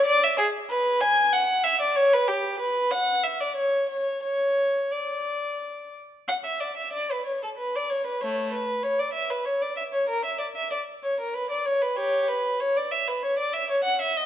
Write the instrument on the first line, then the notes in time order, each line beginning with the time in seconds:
violin
0.06 D5
0.23 E5
0.38 G#4
0.70 B4
1.01 G#5
1.33 F#5
1.64 E5
1.81 D5
1.96 C#5
2.13 B4
2.28 G4
2.60 B4
2.91 F#5
3.24 E5
3.40 D5
3.56 C#5
3.89 C#5
4.23 C#5
4.91 D5
6.28 F#5
6.45 E5
6.60 D5
6.77 E5
6.93 D5
7.11 B4
7.26 C#5
7.43 A4
7.58 B4
7.76 D5
7.90 C#5
8.07 B4
8.22 A3 C#5
8.53 B4
8.83 C#5
8.99 D5
9.13 E5
9.30 B4
9.45 C#5
9.61 D5
9.77 E5
9.93 C#5
10.09 A#4
10.25 E5
10.39 D5
10.56 E5
10.71 D5
11.03 C#5
11.20 A#4
11.34 B4
11.51 D5
11.65 C#5
11.82 B4
11.97 G4 C#5
12.29 B4
12.60 C#5
12.77 D5
12.92 E5
13.08 B4
13.23 C#5
13.39 D5
13.54 E5
13.70 C#5
13.84 F#5
14.01 E5
14.17 D#5